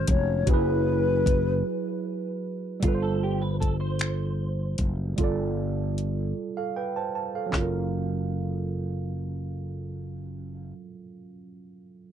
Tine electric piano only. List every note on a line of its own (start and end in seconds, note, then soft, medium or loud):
0.00 0.43 G#3 medium
0.00 0.46 C#4 medium
0.00 0.43 F#4 medium
0.00 0.45 A#4 medium
0.46 2.78 F#3 medium
0.46 2.79 E4 medium
0.51 2.80 G#4 medium
0.51 2.82 B4 medium
2.80 5.13 G3 medium
2.80 5.14 F4 medium
2.85 5.15 A4 medium
2.85 2.92 B4 medium
2.95 5.20 C5 medium
5.16 7.48 G3 medium
5.16 7.49 F4 medium
5.21 6.35 A4 medium
5.21 6.36 D5 medium
6.57 6.75 A4 soft
6.57 6.75 F5 medium
6.76 6.95 B4 soft
6.76 6.95 G5 medium
6.96 7.33 C5 soft
6.96 7.14 A5 medium
7.15 7.51 A5 medium
7.35 7.72 A4 soft
7.35 7.72 F5 soft
7.46 10.64 F#3 medium
7.51 10.69 C#4 medium
7.57 10.75 F4 medium
7.61 10.80 A#4 medium